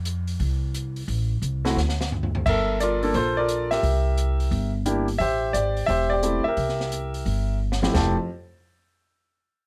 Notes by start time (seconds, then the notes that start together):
Already playing: F2
0.05 closed hi-hat
0.28 open hi-hat
0.40 C2, kick, open hi-hat
0.74 closed hi-hat
0.96 open hi-hat
1.08 A1, kick, open hi-hat
1.42 C2, closed hi-hat
1.65 A3 C4 E4 F#4, snare, open hi-hat
1.76 D2, snare
1.89 snare
2.01 snare
2.12 floor tom
2.23 floor tom
2.35 floor tom
2.46 G1 A4 A#4 E5, kick, crash
2.80 F4 A#4 D5, closed hi-hat
3.03 A#3 D4 F4 A4, open hi-hat
3.14 A#1 F4 A4 C5, kick, open hi-hat
3.37 F4 A#4 D5
3.49 closed hi-hat
3.71 G4 A#4 E5, snare, open hi-hat
3.83 C2, kick, open hi-hat
4.18 closed hi-hat
4.40 open hi-hat
4.51 G1, kick, open hi-hat
4.86 A#3 D4 E4 G4, closed hi-hat
5.08 open hi-hat
5.18 A1 G4 C5 E5, kick, open hi-hat
5.53 G#1 G4 D5, closed hi-hat
5.77 open hi-hat
5.86 E1 G4 C5 E5, kick, open hi-hat
6.10 G4 D5
6.23 A3 C4 E4 G4, closed hi-hat
6.44 E5, muted upright bass stroke
6.48 G4 A#4
6.57 C2, kick, open hi-hat
6.69 snare
6.80 snare
6.92 closed hi-hat
7.14 open hi-hat
7.26 G1, kick, open hi-hat
7.72 snare
7.82 F2 A3 C4 E4 G4, snare
7.94 F1 A3 C4 E4 G4 A5, kick, snare, splash